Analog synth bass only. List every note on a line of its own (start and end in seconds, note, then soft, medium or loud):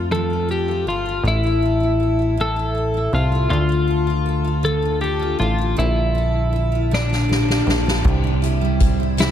0.00 0.87 F2 medium
0.85 1.22 G1 medium
1.24 3.09 A1 medium
3.13 3.49 C2 medium
3.51 5.36 D2 medium
5.40 5.76 A1 medium
5.78 7.63 A#1 medium
7.67 8.03 A#1 medium
8.05 9.31 C2 loud